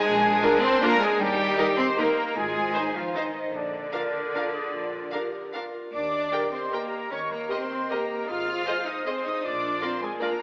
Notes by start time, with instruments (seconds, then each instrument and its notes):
Already playing: cello section G#3, harp G#3 G#4, trumpet section G#4, flute section G#5, violin section G#5
0.05 double bass section A#1, harp A#2, clarinet D4
0.23 harp A#3
0.42 viola section D4 F4, french horn section D4 A#4, violin section A#4, harp A#4
0.62 cello section C4, harp D4, trumpet section C5, violin section C6, flute section C6
0.81 cello section A#3, french horn section D4 A#4, viola section D4 F4, trumpet section A#4, violin section A#4 A#5, flute section A#5
1.00 cello section G#3, trumpet section G#4, violin section G#5, flute section G#5
1.19 double bass section D#2, harp D#3, cello section G3, clarinet D#4, trumpet section G4, flute section G5, violin section G5
1.39 harp D#4
1.57 french horn section D#4 A#4, viola section D#4 G4, clarinet G4, violin section A#4, harp A#4
1.77 cello section C4, trumpet section C5, harp D#5, violin section C6, flute section C6
1.96 cello section A#3, french horn section D#4 A#4, viola section D#4 G4, clarinet D#4, trumpet section A#4, violin section A#4 A#5, flute section A#5, harp A#5
2.16 harp D#5
2.35 double bass section G#1, harp G#2, cello section G#3, clarinet F4, trumpet section G#4, violin section G#5, flute section G#5
2.54 harp C4
2.74 french horn section D#4 C5, viola section D#4 C5, clarinet D#4, violin section C5
2.95 cello section F3, trumpet section F4, harp C5, violin section F5, flute section F5
3.07 cello section F3
3.14 cello section D#3, french horn section D#4 C5, viola section D#4 C5, trumpet section D#4, violin section C5 D#5, flute section D#5
3.35 harp C5
3.53 double bass section A#1, harp A#2, cello section D3, trumpet section D4, clarinet D4, violin section D5, flute section D5
3.72 harp A#3
3.92 viola section D4 A#4, french horn section F4 A#4, harp F4, clarinet A#4, violin section F5
4.13 harp A#4
4.34 viola section D4 A#4, french horn section F4 A#4, harp D5, violin section F5
4.54 clarinet G#4, harp A#4
4.72 double bass section A#1, harp A#2, clarinet F4
4.92 harp A#3
5.12 viola section D4 A#4, harp F4, french horn section F4 A#4, clarinet G4, violin section F5
5.33 harp A#4
5.53 viola section D4 A#4, french horn section F4 A#4, clarinet F4, harp D5, violin section F5
5.74 harp A#4
5.92 double bass section D#2, harp D#3, cello section D4, trumpet section D5, violin section D6, flute section D6
6.12 harp D#4
6.31 viola section G4 A#4, french horn section G4 A#4, clarinet G4, harp A#4, violin section G5
6.52 cello section C4, trumpet section C5, harp D#5, flute section C6, violin section C6
6.71 cello section A#3, french horn section G4 A#4, viola section G4 A#4, trumpet section A#4, harp G5, violin section G5 A#5, flute section A#5
6.93 harp D#5
7.11 double bass section D#2, harp D#3, cello section C#4, clarinet A#4, trumpet section C#5, flute section C#6, violin section C#6
7.30 cello section A#3, harp D#4, trumpet section A#4, flute section A#5, violin section A#5
7.48 cello section C4, french horn section G4 A#4, viola section G4 A#4, harp A#4, trumpet section C5, violin section D#5 C6, flute section C6
7.70 harp D#5
7.89 cello section A#3, french horn section G4 A#4, clarinet G4, viola section G4 A#4, trumpet section A#4, violin section D#5 A#5, harp G5, flute section A#5
8.09 harp D#5
8.28 double bass section G#1, harp G#2, cello section F4, clarinet G#4, trumpet section F5, violin section F6, flute section F6
8.46 harp C4
8.66 french horn section G#4 C5, harp G#4, viola section G#4 C5, clarinet C5, violin section D#5
8.86 cello section D#4, harp C5, trumpet section D#5, flute section D#6, violin section D#6
9.05 cello section C4, clarinet G#4, viola section G#4 C5, french horn section G#4 C5, trumpet section C5, harp D#5, violin section D#5 C6, flute section C6
9.25 cello section D#4, harp C5, trumpet section D#5, violin section D#6, flute section D#6
9.43 double bass section A#1, harp A#2, cello section D4, clarinet F4, trumpet section D5, flute section D6, violin section D6
9.62 harp A#3
9.81 cello section C4, french horn section F4 A#4, viola section F4 A#4, trumpet section C5, violin section D5 C6, flute section C6
10.01 cello section G#3, trumpet section G#4, harp A#4, flute section G#5, violin section G#5
10.20 cello section A#3, clarinet D4, french horn section F4 A#4, viola section F4 A#4, trumpet section A#4, violin section D5 A#5, harp D5, flute section A#5